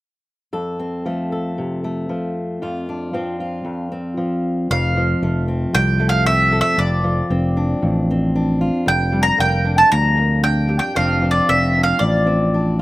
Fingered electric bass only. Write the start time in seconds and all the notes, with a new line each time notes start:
4.71 F1
5.22 F1
5.75 C2
6.78 F1
7.30 F1
7.83 A1
8.87 F1
9.39 F1
9.92 D2
10.97 F1
11.49 F1
12.01 A1